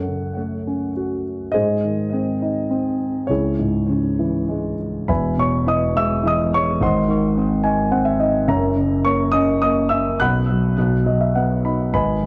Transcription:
grand piano
Already playing: F#2 A4 C#5 F#5
0.08 C#3
0.37 A3
0.67 C#4
0.97 F#4
1.52 G#2 G#4 C5 D#5
1.85 D#3
2.13 C4
2.42 D#4
2.71 C4
3.27 C#2 E4 G#4 C#5
3.59 G#2
3.89 C#3
4.19 E3
4.48 G#3
5.08 E1 E2 B4 E5 G#5 B5
5.37 B2 C#5 C#6
5.67 E3 D#5 D#6
5.96 G#3 E5 E6
6.23 E3 D#5
6.27 D#6
6.54 G#3 C#5 C#6
6.81 G#1 G#2 C5 D#5 F#5 C6
7.08 D#3
7.37 C4
7.63 D#4 G#5
7.92 C4 F#5
8.05 E5
8.20 D#4 D#5
8.48 F#1 F#2 A#4 C#5 E5 A#5
8.76 C#3
9.05 A#3 C#5 C#6
9.32 C#4 D#5 D#6
9.62 A#3 D#5 D#6
9.89 C#4 E5 E6
10.20 B1 B2 F#5 B5 F#6
10.50 F#3
10.78 B1 B2
11.06 F#3 D#5
11.21 E5
11.35 B3 F#5
11.65 D#4 B5
11.93 G#1 G#2 B4 D#5 G#5 B5
12.23 D#3

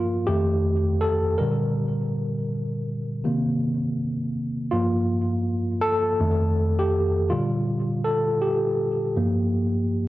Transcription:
tine electric piano
Already playing: G2 F3 A#3 F4 A#4
0.27 F2 D#3 A3 G4
1.01 A4
1.38 A#2 D3 G3 A#4
3.24 C3 D#3 A#3
4.71 G2 F3 A#3 F4
5.82 A4
6.20 F2 D#3 A3
6.79 G4
7.30 A#2 D3 G3 F4
8.04 A4
8.42 G4
9.16 G2 F3 A#3

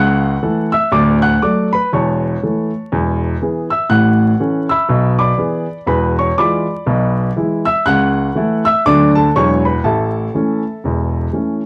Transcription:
grand piano
Already playing: C#2 C#3 F#5 F#6
0.43 E3 A3 A4
0.72 E5 E6
0.92 D1 D2 D5 D6
1.22 F#5 F#6
1.42 F#3 A3 A4 D5 D6
1.73 B4 B5
1.93 E1 E2 C#5 A5 C#6
2.43 E3 A3 A4
2.92 E1 E2
3.42 E3 B3 G#4
3.70 E5 E6
3.89 A1 A2 F#5 F#6
4.40 E3 C#4 A4
4.69 E5 B5 E6
4.89 B1 B2
5.19 D5 B5 D6
5.38 E3 B3 G#4
5.87 E1 E2 B4 B5
6.19 C#5 C#6
6.38 E3 G#3 F4 D5 B5 D6
6.87 B1 B2
7.37 E3 G#3 E4
7.65 E5 E6
7.86 C#2 C#3 F#5 F#6
8.35 E3 A3 E4
8.65 E5 E6
8.86 D2 D3 F#3 A3 D4 D5 D6
9.15 A4 A5
9.35 E1 E2 F#3 G#3 D4 C#5 C#6
9.65 B4 B5
9.84 A1 A2 A4 E5 A5
10.34 E3 A3 C#4
10.84 E1 E2
11.33 E3 A3 C#4

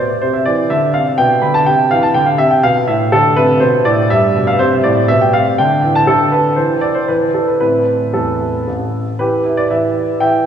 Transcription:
grand piano
0.09 D5
0.22 C3 C5
0.34 E5
0.45 E3 D5
0.70 D3 E5
0.94 C3 F5
1.18 B2 G5
1.42 D3 B5
1.54 A5
1.66 C3 G5
1.91 E3 F5
2.03 A5
2.14 D3 G5
2.26 F5
2.38 C3 E5
2.51 G5
2.63 B2 F5
2.88 A2 E5
3.12 D3 A4
3.36 C3 B4
3.60 B2 C5
3.85 A2 D5
4.10 G2 E5
4.36 B2
4.47 F5
4.59 C3 C5
4.72 E5
4.84 A2 D5
5.08 B2 E5
5.21 G5
5.33 C3 F5
5.58 D3 G5
5.84 E3
5.95 A5
6.07 D3 A4
6.32 B4
6.56 E3 C5
6.81 D5
6.95 C5
7.08 E3 B4
7.21 C5
7.34 A4
7.48 B4
7.60 A2 C4 E4 B4
8.14 E2 A4
8.68 A1
9.19 E3 G4 B4
9.45 E4
9.57 D5
9.71 E3 B4 E5
9.96 E4
10.20 E3 E5 G5

